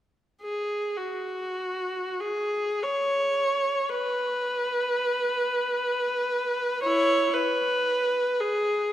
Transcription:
0.42 G#4
0.97 F#4
2.20 G#4
2.83 C#5
3.88 B4
6.83 E4 C#5
7.33 B4
8.40 G#4

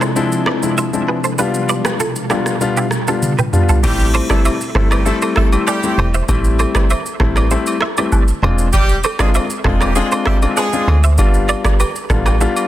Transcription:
Already playing: C3 F3 G#3 D4 E4
0.01 A4 C5, cross-stick, shaker
0.16 F3 G#3 C4 D4 E4, shaker
0.32 shaker
0.46 B4 D5, cross-stick
0.62 F3 G#3 C4 D4 E4, shaker
0.78 C5 E5, shaker
0.93 F3 G#3 C4 D4 E4, shaker
1.08 G#4 B4
1.24 A4 C5, shaker
1.38 B2 G3 B3 D4 F4 G4 B4, shaker
1.54 shaker
1.69 B4 D5, shaker
1.85 G4 B4, cross-stick, shaker
2.00 F4 A4, shaker
2.16 shaker
2.30 G3 B3 D4 E4 F4 G4, cross-stick, shaker
2.46 cross-stick, shaker
2.61 G3 B3 D4 F4, shaker
2.77 E4 G4, shaker
2.91 cross-stick, shaker
3.07 G3 B3 D4 F4 A4, shaker
3.22 high tom, shaker
3.38 G4 B4, mid tom, shaker
3.53 G3 B3 D4 F4, mid tom, shaker
3.69 F4 A4, floor tom, shaker
3.83 A1 G3 A3 C4 E4 G4, kick, crash, high agogo, shaker
3.99 shaker
4.14 A4 C5, high agogo, shaker
4.30 G3 A3 C4 E4 A4 B4 D5, kick, cross-stick, shaker
4.45 C5 E5, high agogo, shaker
4.61 shaker
4.75 G1 G3 A3 C4 E4 A4 C5, kick, cross-stick
4.91 G3 G4 B4 D5, cross-stick, high agogo, shaker
5.06 G3 A3 C4 E4 A4, shaker
5.22 A4 C5, high agogo, shaker
5.36 A3 A4 C5 E5, kick, cross-stick
5.52 G3 A3 C4 E4, high agogo, shaker
5.67 G3 G4 A4 D5, low woodblock, shaker
5.83 G3 A3 C4 E4, shaker
5.98 E1 A4 C5, high agogo
6.14 C5 E5, shaker
6.28 A1 G3 A3 C4 E4, kick, high agogo, shaker
6.44 shaker
6.59 A4 C5, high agogo, shaker
6.75 B4 D5, kick, cross-stick, shaker
6.90 C5 E5, high agogo, shaker
7.06 shaker
7.20 A1 G3 A3 C4 E4 A4 C5, kick, cross-stick
7.36 B4 D5, cross-stick, high agogo, shaker
7.51 G3 A3 C4 E4 A4 C5, shaker
7.66 high agogo, shaker
7.81 C5 E5, cross-stick
7.97 G3 A3 C4 E4 B4 D5, high agogo, shaker
8.12 kick, low woodblock, shaker
8.28 shaker
8.43 E1 G#3 C4 D4 F4 G#4 C5, high agogo
8.58 shaker
8.73 G3 G4, kick, high agogo, shaker
8.89 shaker
9.03 A4 C5, high agogo, shaker
9.19 G#3 C4 D4 F4 G#4 B4 D5, kick, cross-stick, shaker
9.34 C5 E5, high agogo, shaker
9.50 shaker
9.64 E1 G#3 C4 D4 F4 G#4 A4 C5, kick, cross-stick
9.81 G3 G4 B4 D5, cross-stick, high agogo, shaker
9.96 G#3 C4 D4 F4 G#4, shaker
10.11 A4 C5, high agogo, shaker
10.26 G3 G4 C5 E5, kick, cross-stick
10.42 G#3 C4 D4 F4, high agogo, shaker
10.57 G#3 G#4 B4 D5, low woodblock, shaker
10.73 G#3 C4 D4 F4, shaker
10.88 D2 A4 C5, high agogo
11.04 C5 E5, shaker
11.18 G1 G3 B3 D4 F4, kick, high agogo, shaker
11.34 shaker
11.49 B4 D5, high agogo, shaker
11.64 B4 D5, kick, cross-stick, shaker
11.80 G4 B4, high agogo, shaker
11.96 shaker
12.10 A1 G3 B3 D4 F4 A4, kick, cross-stick, shaker
12.26 G4 B4, cross-stick, high agogo, shaker
12.41 G3 B3 D4 F4 A4, shaker
12.56 high agogo, shaker

